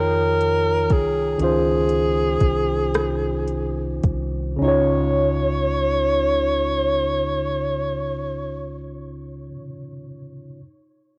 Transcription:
Already playing: F2 D#3 D#4 F4 A#4 C#5 G5
0.41 closed hi-hat
0.90 C2 G#4, kick, closed hi-hat
1.38 C#2 D#3 C#4 D#4 G#4, closed hi-hat
1.43 F4 C5
1.89 closed hi-hat
2.40 C2, kick, closed hi-hat
2.94 cross-stick, closed hi-hat
3.48 closed hi-hat
4.03 C2, kick, closed hi-hat
4.56 C#3 C#4
4.61 C#2 D#4 F4 C#5
4.68 C#5

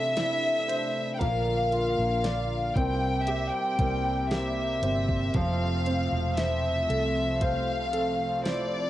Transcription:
Already playing: C2 C3 E3 F3 A3 C4 D4 E4 A4 C5 E5
0.16 A3 C4 E4 A4, snare, closed hi-hat
0.68 C5, closed hi-hat
1.15 A#3 G5
1.20 A#1 A#2 D3 F3 A#3 D4 F4 A#4 F5, kick, closed hi-hat
1.72 F4, closed hi-hat
1.99 A#1
2.24 A#3 D4 F4 A#4 D5, snare, closed hi-hat
2.75 C2 C3 G3 A#3 C4 E4 G4 A#4 G5, kick, closed hi-hat
3.27 G4 E5, closed hi-hat
3.53 G5
3.79 C2 G3 C4 E4 A#4, kick, closed hi-hat
4.30 G3 C4 E4 G4 A#4 E5, snare, closed hi-hat
4.82 G1 C4, closed hi-hat
5.08 kick
5.34 F1 F3 A3 C4 A4 F5, kick, closed hi-hat
5.86 C4, closed hi-hat
6.12 E1
6.37 A3 C4 E4 A4 C5 E5, snare, closed hi-hat
6.89 C2 C4 A4, closed hi-hat
7.41 C5 F5, kick, closed hi-hat
7.92 C4 A4, closed hi-hat
8.44 A3 C4 E4 A4 C5 D5, snare, closed hi-hat

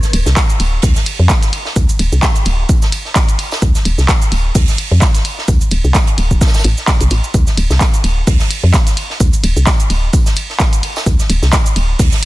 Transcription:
0.03 snare, shaker
0.13 D1, closed hi-hat, ride, tambourine
0.26 C2, snare, shaker
0.36 kick, snare, clap, tambourine, shaker
0.50 shaker
0.60 D1, closed hi-hat, ride, tambourine
0.82 D2, kick, open hi-hat, shaker
0.96 snare, shaker
1.06 closed hi-hat, ride, tambourine
1.19 F2
1.29 kick, snare, clap, tambourine, shaker
1.42 snare, closed hi-hat, shaker
1.53 closed hi-hat, ride, tambourine
1.65 snare
1.76 D2, kick, tambourine, shaker
1.89 shaker
1.99 D1, closed hi-hat, ride, tambourine
2.12 C2, shaker
2.23 kick, snare, clap, tambourine, shaker
2.35 closed hi-hat, shaker
2.45 D1, closed hi-hat, ride, tambourine
2.69 kick, tambourine, shaker
2.82 snare, shaker
2.92 closed hi-hat, ride, tambourine
3.05 snare
3.15 kick, snare, clap, tambourine, shaker
3.29 closed hi-hat, shaker
3.39 closed hi-hat, ride, tambourine
3.51 snare, tambourine
3.62 D2, kick, shaker
3.75 snare, shaker
3.85 D1, closed hi-hat, ride, tambourine
3.98 C2, snare, shaker
4.09 kick, snare, clap, tambourine, shaker
4.22 shaker
4.32 D1, closed hi-hat, ride, tambourine
4.55 D2, kick, open hi-hat, shaker
4.68 snare, shaker
4.78 closed hi-hat, ride, tambourine
4.91 F2
5.01 kick, snare, clap, tambourine, shaker
5.15 snare, closed hi-hat, shaker
5.25 closed hi-hat, ride, tambourine
5.38 snare
5.48 D2, kick, tambourine, shaker
5.61 shaker
5.71 D1, closed hi-hat, ride, tambourine
5.84 C2, shaker
5.94 kick, snare, clap, tambourine, shaker
6.07 closed hi-hat, shaker
6.18 D1, closed hi-hat, ride, tambourine
6.31 kick, shaker
6.41 kick, snare, tambourine, shaker
6.47 snare, tambourine
6.54 snare, tambourine, shaker
6.59 snare, tambourine
6.64 A1, closed hi-hat, ride
6.77 snare, shaker
6.88 kick, snare, clap, tambourine, shaker
7.01 C2, closed hi-hat, shaker
7.10 A1, closed hi-hat, ride, tambourine
7.24 shaker
7.34 D2, kick, tambourine, shaker
7.47 snare, shaker
7.57 D1, closed hi-hat, ride, tambourine
7.70 C2, snare, shaker
7.81 kick, snare, clap, tambourine, shaker
7.94 shaker
8.04 D1, closed hi-hat, ride, tambourine
8.27 D2, kick, open hi-hat, shaker
8.40 snare, shaker
8.51 closed hi-hat, ride, tambourine
8.63 F2
8.73 kick, snare, clap, tambourine, shaker
8.87 snare, closed hi-hat, shaker
8.97 closed hi-hat, ride, tambourine
9.10 snare
9.20 D2, kick, tambourine, shaker
9.33 shaker
9.43 D1, closed hi-hat, ride, tambourine
9.56 C2, shaker
9.67 kick, snare, clap, tambourine, shaker
9.80 closed hi-hat, shaker
9.90 D1, closed hi-hat, ride, tambourine
10.13 kick, tambourine, shaker
10.26 snare, shaker
10.36 closed hi-hat, ride, tambourine
10.50 snare
10.60 kick, snare, clap, tambourine, shaker
10.73 closed hi-hat, shaker
10.83 closed hi-hat, ride, tambourine
10.96 snare, tambourine
11.06 D2, kick, tambourine, shaker
11.19 snare, shaker
11.30 D1, closed hi-hat, ride, tambourine
11.42 C2, snare, shaker
11.52 kick, snare, clap, tambourine, shaker
11.66 shaker
11.76 D1, closed hi-hat, ride, tambourine
11.99 D2, kick, open hi-hat, shaker
12.12 snare, shaker

